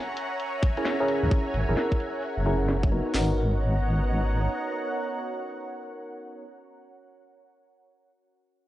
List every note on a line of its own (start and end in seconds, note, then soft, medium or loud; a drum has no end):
0.00 3.11 C#5 medium
0.00 3.13 C#5 medium
0.00 3.11 E5 medium
0.00 3.15 F#5 medium
0.00 3.11 G#5 medium
0.00 3.11 A#5 medium
0.00 3.15 A#5 medium
0.17 open hi-hat medium
0.40 closed hi-hat medium
0.63 kick loud
0.63 open hi-hat loud
0.77 0.95 C#4 medium
0.77 0.95 E4 medium
0.77 0.95 G#4 medium
0.77 0.95 A#4 medium
0.77 closed hi-hat medium
0.85 snare loud
0.85 closed hi-hat medium
1.00 1.65 C#4 medium
1.00 1.65 E4 medium
1.00 1.65 G#4 medium
1.00 1.65 A#4 loud
1.08 open hi-hat medium
1.23 1.30 D#2 medium
1.23 cross-stick soft
1.31 kick loud
1.31 closed hi-hat medium
1.54 1.66 G#1 medium
1.54 open hi-hat medium
1.69 1.75 G#1 medium
1.69 2.44 C#4 medium
1.69 2.44 E4 medium
1.69 2.44 G#4 medium
1.69 2.44 A#4 medium
1.77 snare loud
1.77 closed hi-hat medium
1.92 kick medium
2.00 open hi-hat medium
2.23 closed hi-hat medium
2.37 3.02 F#1 loud
2.46 2.90 C#4 medium
2.46 2.90 E4 medium
2.46 2.90 G#4 medium
2.46 2.90 A#4 medium
2.46 cross-stick soft
2.46 open hi-hat medium
2.61 closed hi-hat medium
2.69 snare loud
2.69 closed hi-hat medium
2.83 kick loud
2.92 3.13 B3 medium
2.92 3.13 D#4 medium
2.92 3.13 F#4 medium
2.92 3.13 A#4 medium
2.92 open hi-hat medium
3.06 cross-stick soft
3.14 4.48 G#1 medium
3.14 6.45 B3 medium
3.14 6.45 D#4 medium
3.14 6.45 F#4 medium
3.14 6.45 A#4 medium
3.14 6.45 C#5 medium
3.14 6.45 D#5 medium
3.14 6.45 F#5 medium
3.14 6.45 A#5 medium
3.14 snare loud
3.14 open hi-hat medium
3.23 6.53 F#5 medium
3.31 6.61 A#5 medium